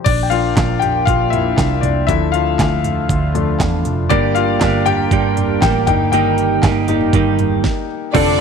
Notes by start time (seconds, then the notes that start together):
0.04 A#1 F3 A#3 D4 D5, kick, closed hi-hat, crash
0.23 G5
0.30 F3 A#3 D4 F4 F5, closed hi-hat
0.57 A#1, kick, snare, clap, closed hi-hat
0.80 G4 G5, closed hi-hat, floor tom
1.05 A#1 F4 F5, kick, closed hi-hat
1.30 E4 E5, closed hi-hat, floor tom
1.58 C2, kick, snare, clap, closed hi-hat
1.81 C2 D4 D5, closed hi-hat, floor tom
2.07 D2 D3 F3 A3 D4 E4 F4 E5, kick, closed hi-hat
2.32 F4 F5, closed hi-hat
2.59 D2, kick, snare, clap, closed hi-hat
2.84 closed hi-hat, floor tom
3.09 D2, kick, closed hi-hat
3.34 F3 A3 D4, closed hi-hat, floor tom
3.60 E2, kick, snare, clap, closed hi-hat
3.85 F1, closed hi-hat, floor tom
4.09 G1 G2 D3 G3 A#3 D4 G4 A#4 D5, kick, closed hi-hat
4.35 F4 F5, closed hi-hat
4.60 G1 G3 A#3 D4 G4, kick, snare, clap, closed hi-hat
4.86 G3 A#3 D4 G4 G5, closed hi-hat, floor tom
5.11 G1 G2 D3 G3 A#3 D4 G4, kick, closed hi-hat
5.37 closed hi-hat, floor tom
5.61 A1 G3 A#3 D4 G4 G5, kick, snare, clap, closed hi-hat
5.87 G1 G3 A#3 D#4 G4 G5, kick, closed hi-hat, floor tom
6.12 G1 G2 D#3 G3 A#3 D#4 G4 G5, closed hi-hat
6.38 closed hi-hat
6.63 G1 G3 A#3 D#4 G4, kick, snare, clap, closed hi-hat
6.88 G3 A#3 D#4 G4, closed hi-hat, floor tom
7.01 floor tom
7.13 G1 G2 D#3 G3 A#3 D#4 G4, kick, closed hi-hat
7.39 closed hi-hat, floor tom
7.64 kick, snare
8.13 F1 D3 F3 G3 A3 C4 D4 A4 D5, kick, open hi-hat, crash